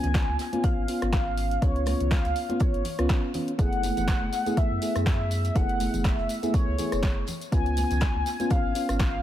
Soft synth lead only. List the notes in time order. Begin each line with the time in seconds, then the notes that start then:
Already playing: G#5
0.64 F5
1.13 F5
1.62 C#5
1.87 C#5
2.11 F5
2.61 C#5
3.59 F#5
4.57 E5
5.06 E5
5.56 F#5
6.05 E5
6.54 C#5
7.52 G#5
8.51 F5
9.00 F5